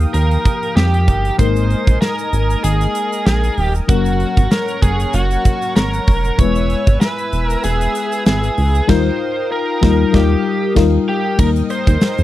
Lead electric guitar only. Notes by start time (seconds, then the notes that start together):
0.14 A#4
0.76 G4
1.39 C5
2.01 A#4
2.64 G#4
3.26 G#4
3.60 G4
3.89 F#4
4.51 A#4
4.83 G#4
5.14 F#4
5.76 A#4
6.39 C#5
7.01 B4
7.47 A#4
7.64 G#4
8.27 G#4
8.89 C5
9.52 A#4
10.14 G4
11.09 G4
11.39 A#4
11.71 C5